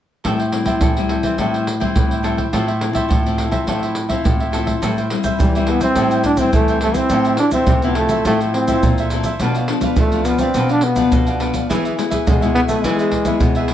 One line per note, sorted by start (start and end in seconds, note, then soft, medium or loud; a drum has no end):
0.24 0.80 A2 soft
0.24 0.42 G3 soft
0.24 0.42 C4 soft
0.24 0.43 E4 medium
0.24 0.37 A4 medium
0.24 0.38 C5 medium
0.24 0.38 E5 medium
0.24 0.38 G5 medium
0.24 pandeiro medium
0.24 surdo medium
0.39 0.51 C5 soft
0.39 0.51 E5 soft
0.39 0.52 G5 soft
0.39 pandeiro soft
0.52 0.91 G3 soft
0.52 0.91 C4 soft
0.52 0.92 E4 medium
0.52 muted cavaquinho stroke soft
0.52 pandeiro medium
0.66 0.79 A2 medium
0.66 0.81 C5 medium
0.66 0.80 E5 medium
0.66 0.80 G5 medium
0.66 pandeiro soft
0.66 surdo soft
0.81 1.18 A2 medium
0.81 1.36 E3 soft
0.81 1.08 A4 soft
0.81 1.08 C5 soft
0.81 1.09 E5 soft
0.81 1.10 G5 soft
0.81 pandeiro medium
0.81 surdo medium
0.97 1.35 G3 medium
0.97 1.35 C4 soft
0.97 1.35 E4 medium
0.97 pandeiro soft
1.09 1.23 A4 soft
1.09 1.23 C5 soft
1.09 1.24 E5 soft
1.09 1.22 G5 soft
1.09 pandeiro medium
1.23 1.36 E3 medium
1.23 1.39 C5 soft
1.23 1.38 E5 medium
1.23 1.37 G5 medium
1.23 pandeiro soft
1.23 surdo soft
1.38 1.94 A2 soft
1.38 1.66 G3 soft
1.38 1.67 C4 soft
1.38 1.67 E4 medium
1.38 1.53 A4 medium
1.38 1.53 C5 medium
1.38 1.54 E5 medium
1.38 1.53 G5 medium
1.38 pandeiro medium
1.38 surdo medium
1.54 1.66 C5 soft
1.54 1.67 E5 soft
1.54 1.67 G5 soft
1.54 pandeiro soft
1.67 muted cavaquinho stroke soft
1.67 pandeiro medium
1.80 2.20 G3 medium
1.80 2.20 C4 soft
1.80 2.20 E4 medium
1.80 2.10 C5 soft
1.80 2.09 E5 soft
1.80 2.09 G5 medium
1.80 pandeiro medium
1.80 surdo soft
1.95 2.44 A2 medium
1.95 2.51 E3 soft
1.95 pandeiro medium
1.95 surdo medium
2.11 2.23 C5 soft
2.11 2.24 E5 soft
2.11 2.24 G5 soft
2.11 pandeiro soft
2.23 2.42 G3 soft
2.23 2.43 C4 soft
2.23 2.43 E4 soft
2.23 2.38 A4 medium
2.23 2.38 C5 medium
2.23 2.38 E5 medium
2.23 2.36 G5 medium
2.23 pandeiro medium
2.37 2.53 C5 soft
2.37 2.52 E5 soft
2.37 2.52 G5 soft
2.37 pandeiro soft
2.37 surdo soft
2.53 3.08 A2 soft
2.53 2.71 F3 soft
2.53 2.71 C4 medium
2.53 2.71 E4 soft
2.53 2.67 F4 medium
2.53 2.67 A4 medium
2.53 2.67 C5 medium
2.53 2.66 E5 medium
2.53 pandeiro medium
2.53 surdo soft
2.67 2.81 A4 soft
2.67 2.81 C5 soft
2.67 2.81 E5 soft
2.67 pandeiro soft
2.81 3.09 F3 soft
2.81 3.09 C4 soft
2.81 3.09 E4 medium
2.81 muted cavaquinho stroke soft
2.81 pandeiro medium
2.93 3.07 A2 medium
2.93 3.10 A4 soft
2.93 3.10 C5 medium
2.93 3.09 E5 medium
2.93 pandeiro soft
2.93 surdo soft
3.10 3.66 A2 soft
3.10 3.37 F4 soft
3.10 3.38 A4 soft
3.10 3.39 C5 soft
3.10 3.40 E5 soft
3.10 pandeiro medium
3.10 surdo medium
3.26 3.64 F3 medium
3.26 3.64 C4 soft
3.26 3.64 E4 medium
3.26 pandeiro soft
3.38 3.52 F4 soft
3.38 3.52 A4 soft
3.38 3.51 C5 soft
3.38 3.50 E5 soft
3.38 pandeiro medium
3.51 3.65 C3 medium
3.51 3.67 A4 soft
3.51 3.67 C5 soft
3.51 3.66 E5 medium
3.51 pandeiro medium
3.51 surdo soft
3.67 4.23 A2 soft
3.67 4.07 F3 soft
3.67 4.08 C4 soft
3.67 4.07 E4 medium
3.67 3.81 F4 medium
3.67 3.82 A4 medium
3.67 3.82 C5 medium
3.67 3.81 E5 medium
3.67 pandeiro medium
3.67 surdo soft
3.83 3.95 A4 soft
3.83 3.95 C5 soft
3.83 3.96 E5 soft
3.83 pandeiro soft
3.95 muted cavaquinho stroke soft
3.95 pandeiro medium
4.09 4.49 F3 medium
4.09 4.49 C4 medium
4.09 4.50 E4 medium
4.09 4.39 A4 soft
4.09 4.38 C5 soft
4.09 4.38 E5 medium
4.09 pandeiro medium
4.09 surdo soft
4.25 4.80 A2 soft
4.25 pandeiro medium
4.25 surdo medium
4.40 4.52 A4 soft
4.40 4.52 C5 soft
4.40 4.53 E5 soft
4.40 pandeiro soft
4.52 4.81 F3 soft
4.52 4.81 C4 soft
4.52 4.81 E4 soft
4.52 4.66 F4 medium
4.52 4.67 A4 medium
4.52 4.66 C5 medium
4.52 4.65 E5 medium
4.52 pandeiro medium
4.66 4.81 A4 soft
4.66 4.81 C5 soft
4.66 4.81 E5 soft
4.66 pandeiro medium
4.66 surdo soft
4.82 5.38 A2 soft
4.82 5.00 G3 soft
4.82 5.00 C4 soft
4.82 5.01 E4 soft
4.82 4.96 A4 medium
4.82 4.96 C5 medium
4.82 4.96 E5 medium
4.82 4.96 G5 medium
4.82 pandeiro medium
4.82 shaker medium
4.82 surdo soft
4.97 5.10 C5 soft
4.97 5.10 E5 soft
4.97 5.10 G5 soft
4.97 pandeiro soft
4.97 shaker soft
5.10 5.39 G3 soft
5.10 5.39 C4 soft
5.10 5.39 E4 medium
5.10 muted cavaquinho stroke soft
5.10 pandeiro medium
5.24 5.54 C5 soft
5.24 5.53 E5 medium
5.24 5.52 G5 medium
5.24 pandeiro medium
5.24 shaker medium
5.24 surdo soft
5.40 5.95 E3 soft
5.40 5.70 G3 medium
5.40 pandeiro medium
5.40 shaker medium
5.40 surdo medium
5.55 5.94 G3 soft
5.55 5.94 C4 medium
5.55 5.94 E4 medium
5.55 5.68 C5 soft
5.55 5.69 E5 soft
5.55 5.68 G5 soft
5.55 pandeiro soft
5.55 shaker soft
5.67 5.82 B3 medium
5.67 5.82 A4 soft
5.67 5.82 C5 soft
5.67 5.82 E5 soft
5.67 5.80 G5 soft
5.67 pandeiro medium
5.81 6.23 C4 medium
5.81 5.96 C5 soft
5.81 5.96 E5 medium
5.81 5.95 G5 medium
5.81 pandeiro medium
5.81 shaker medium
5.81 surdo soft
5.96 6.53 A2 soft
5.96 6.37 G3 soft
5.96 6.11 A4 medium
5.96 6.11 C5 medium
5.96 6.11 E5 medium
5.96 pandeiro medium
5.96 shaker medium
5.96 surdo soft
6.00 6.37 C4 soft
6.00 6.37 E4 medium
6.00 6.12 G5 medium
6.11 6.26 E5 soft
6.11 6.26 G5 soft
6.11 pandeiro soft
6.11 shaker soft
6.15 6.26 C5 soft
6.24 6.40 D4 medium
6.24 muted cavaquinho stroke soft
6.24 pandeiro medium
6.24 shaker medium
6.24 surdo soft
6.37 6.78 G3 medium
6.37 6.54 C4 medium
6.37 6.79 C4 medium
6.37 6.68 C5 soft
6.37 6.68 E5 medium
6.37 6.67 G5 medium
6.37 pandeiro medium
6.37 shaker medium
6.37 surdo soft
6.41 6.79 E4 medium
6.53 7.10 E3 medium
6.53 6.81 A3 medium
6.53 pandeiro medium
6.53 shaker medium
6.53 surdo medium
6.68 6.83 C5 soft
6.68 6.83 E5 medium
6.68 6.82 G5 medium
6.68 pandeiro soft
6.68 shaker soft
6.81 7.02 G3 soft
6.81 6.97 A3 medium
6.81 7.02 C4 soft
6.81 7.02 E4 medium
6.81 6.96 A4 soft
6.81 6.97 C5 soft
6.81 6.96 E5 medium
6.81 pandeiro medium
6.85 6.95 G5 medium
6.94 7.39 C4 medium
6.94 7.11 C5 soft
6.94 7.11 E5 soft
6.94 7.10 G5 soft
6.94 pandeiro soft
6.94 shaker medium
6.94 surdo soft
7.09 7.67 A2 soft
7.09 7.29 F3 soft
7.09 7.29 C4 soft
7.09 7.25 F4 medium
7.09 7.25 A4 medium
7.09 7.26 C5 medium
7.09 pandeiro medium
7.09 shaker medium
7.09 surdo medium
7.14 7.30 E4 soft
7.14 7.24 E5 medium
7.25 7.38 A4 soft
7.25 7.39 C5 soft
7.25 7.39 E5 soft
7.25 pandeiro soft
7.25 shaker soft
7.37 7.67 F3 medium
7.37 7.67 C4 soft
7.37 7.53 D4 medium
7.37 7.67 E4 medium
7.37 muted cavaquinho stroke soft
7.37 pandeiro medium
7.51 7.86 C4 medium
7.51 7.82 A4 medium
7.51 7.82 C5 medium
7.51 7.81 E5 medium
7.51 pandeiro medium
7.51 shaker medium
7.51 surdo soft
7.67 8.24 A2 soft
7.67 8.18 C3 medium
7.67 pandeiro medium
7.67 shaker medium
7.67 surdo medium
7.82 8.22 F3 medium
7.82 7.97 B3 medium
7.82 8.22 C4 medium
7.82 8.22 E4 medium
7.82 7.97 A4 soft
7.82 7.97 C5 soft
7.82 7.97 E5 soft
7.82 pandeiro soft
7.82 shaker soft
7.95 8.24 A3 medium
7.95 8.10 F4 soft
7.95 8.11 A4 soft
7.95 8.11 C5 soft
7.95 8.09 E5 soft
7.95 pandeiro medium
8.09 8.25 A4 soft
8.09 8.25 C5 medium
8.09 8.24 E5 medium
8.09 pandeiro medium
8.09 shaker medium
8.09 surdo soft
8.25 8.81 A2 medium
8.25 8.65 F3 soft
8.25 8.40 A3 medium
8.25 8.66 C4 soft
8.25 8.66 E4 medium
8.25 8.39 F4 medium
8.25 8.40 A4 medium
8.25 8.40 C5 medium
8.25 8.40 E5 medium
8.25 pandeiro medium
8.25 shaker medium
8.25 surdo medium
8.41 8.54 A4 soft
8.41 8.54 C5 soft
8.41 8.54 E5 soft
8.41 pandeiro soft
8.41 shaker soft
8.54 9.08 C4 medium
8.54 muted cavaquinho stroke soft
8.54 pandeiro medium
8.68 9.08 F3 medium
8.68 9.08 C4 medium
8.68 9.08 E4 medium
8.68 8.97 A4 medium
8.68 8.97 C5 medium
8.68 8.96 E5 medium
8.68 pandeiro medium
8.68 shaker medium
8.68 surdo soft
8.83 9.32 A#2 medium
8.83 pandeiro medium
8.83 shaker medium
8.83 surdo medium
8.98 9.11 A4 soft
8.98 9.12 C5 medium
8.98 9.12 E5 medium
8.98 pandeiro soft
8.98 shaker soft
9.10 9.31 F3 medium
9.10 9.31 C4 medium
9.10 9.31 E4 soft
9.10 9.25 F4 soft
9.10 9.26 A4 soft
9.10 9.26 C5 medium
9.10 9.24 E5 soft
9.10 pandeiro medium
9.10 shaker medium
9.24 9.40 C5 soft
9.24 9.39 E5 soft
9.24 pandeiro medium
9.24 shaker medium
9.24 surdo soft
9.28 9.41 A4 soft
9.40 9.96 B2 soft
9.40 9.58 F3 soft
9.40 9.59 B3 soft
9.40 9.54 D4 medium
9.40 9.59 D4 medium
9.40 9.55 B4 medium
9.40 pandeiro medium
9.40 shaker medium
9.40 surdo soft
9.44 9.55 D5 medium
9.44 9.56 F5 medium
9.55 9.70 D5 soft
9.55 9.69 F5 soft
9.55 pandeiro soft
9.55 shaker soft
9.59 9.69 B4 soft
9.68 9.96 F3 medium
9.68 9.96 B3 medium
9.68 9.96 D4 medium
9.68 muted cavaquinho stroke soft
9.68 pandeiro medium
9.81 10.12 D5 medium
9.81 10.11 F5 medium
9.81 pandeiro medium
9.81 shaker medium
9.81 surdo soft
9.86 10.12 B4 medium
9.96 10.47 F3 medium
9.96 10.26 A3 medium
9.96 pandeiro medium
9.96 shaker medium
9.96 surdo loud
10.12 10.51 F3 medium
10.12 10.51 B3 medium
10.12 10.51 D4 medium
10.12 10.27 D5 soft
10.12 10.26 F5 soft
10.12 pandeiro soft
10.12 shaker soft
10.16 10.27 B4 soft
10.25 10.41 B3 medium
10.25 10.40 D4 soft
10.25 10.41 B4 soft
10.25 10.41 D5 medium
10.25 pandeiro medium
10.25 shaker medium
10.30 10.40 F5 soft
10.38 10.72 C4 medium
10.38 10.55 D5 medium
10.38 10.54 F5 medium
10.38 pandeiro medium
10.38 shaker medium
10.38 surdo soft
10.43 10.55 B4 soft
10.54 11.09 B2 medium
10.54 10.82 F3 soft
10.54 10.82 B3 medium
10.54 10.82 D4 soft
10.54 10.69 D4 medium
10.54 pandeiro medium
10.54 shaker medium
10.54 surdo soft
10.58 10.70 B4 medium
10.58 10.70 D5 medium
10.58 10.69 F5 medium
10.69 10.85 D4 medium
10.69 10.83 B4 soft
10.69 10.84 D5 soft
10.69 10.83 F5 soft
10.69 pandeiro soft
10.69 shaker soft
10.81 11.41 B3 medium
10.81 muted cavaquinho stroke soft
10.81 pandeiro medium
10.95 11.35 F3 medium
10.95 11.36 B3 medium
10.95 11.36 D4 medium
10.95 11.26 B4 soft
10.95 11.26 D5 medium
10.95 11.25 F5 medium
10.95 pandeiro medium
10.95 shaker medium
10.95 surdo soft
11.12 11.67 B2 soft
11.12 pandeiro medium
11.12 shaker medium
11.12 surdo medium
11.27 11.39 B4 soft
11.27 11.40 D5 medium
11.27 11.40 F5 medium
11.27 pandeiro soft
11.27 shaker soft
11.39 11.67 F3 soft
11.39 11.67 B3 medium
11.39 11.54 D4 soft
11.39 11.67 D4 medium
11.39 11.54 B4 soft
11.39 11.54 D5 medium
11.39 11.53 F5 medium
11.39 pandeiro medium
11.54 11.69 B4 soft
11.54 11.69 D5 soft
11.54 11.68 F5 soft
11.54 pandeiro medium
11.54 shaker medium
11.54 surdo soft
11.69 12.25 E3 soft
11.69 11.87 G#3 soft
11.69 11.87 B3 soft
11.69 11.83 E4 medium
11.69 11.87 E4 medium
11.69 11.83 G#4 medium
11.69 11.84 B4 medium
11.69 11.84 E5 medium
11.69 pandeiro medium
11.69 shaker medium
11.69 surdo medium
11.85 11.97 G#4 soft
11.85 11.97 B4 soft
11.85 11.98 E5 soft
11.85 pandeiro soft
11.85 shaker soft
11.97 12.25 G#3 medium
11.97 12.26 B3 soft
11.97 12.26 E4 medium
11.97 muted cavaquinho stroke soft
11.97 pandeiro medium
11.97 shaker medium
12.10 12.40 G#4 soft
12.10 12.39 B4 medium
12.10 12.39 E5 medium
12.10 pandeiro medium
12.10 shaker medium
12.10 surdo soft
12.27 12.82 B2 medium
12.27 12.54 G#3 medium
12.27 pandeiro medium
12.27 shaker medium
12.27 surdo medium
12.41 12.80 G#3 medium
12.41 12.81 B3 medium
12.41 12.80 E4 medium
12.41 12.55 G#4 soft
12.41 12.55 B4 soft
12.41 12.54 E5 soft
12.41 pandeiro soft
12.41 shaker soft
12.55 12.61 B3 medium
12.55 12.69 E4 soft
12.55 12.69 G#4 soft
12.55 12.68 B4 soft
12.55 12.67 E5 soft
12.55 pandeiro medium
12.68 12.84 A3 medium
12.68 12.83 G#4 medium
12.68 12.83 B4 medium
12.68 12.82 E5 medium
12.68 pandeiro soft
12.68 shaker medium
12.68 surdo soft
12.83 13.39 E3 soft
12.83 13.69 G#3 medium
12.83 13.11 G#3 soft
12.83 13.11 B3 soft
12.83 12.97 E4 medium
12.83 13.12 E4 medium
12.83 12.98 G#4 medium
12.83 12.98 B4 medium
12.83 12.97 E5 medium
12.83 pandeiro medium
12.83 shaker medium
12.83 surdo soft
12.99 13.12 G#4 soft
12.99 13.12 B4 soft
12.99 13.12 E5 soft
12.99 pandeiro soft
12.99 shaker soft
13.12 muted cavaquinho stroke soft
13.12 pandeiro medium
13.12 surdo soft
13.25 13.65 G#3 medium
13.25 13.65 B3 medium
13.25 13.66 E4 medium
13.25 13.56 G#4 soft
13.25 13.55 B4 medium
13.25 13.54 E5 medium
13.25 pandeiro medium
13.25 shaker medium
13.25 surdo soft
13.40 13.74 B2 medium
13.40 pandeiro medium
13.40 shaker medium
13.40 surdo medium
13.55 13.69 G#4 soft
13.55 13.70 B4 medium
13.55 13.69 E5 medium
13.55 pandeiro soft
13.55 shaker soft
13.68 13.74 G#3 soft
13.68 13.74 B3 soft
13.68 13.74 E4 soft
13.68 13.74 G#4 soft
13.68 pandeiro medium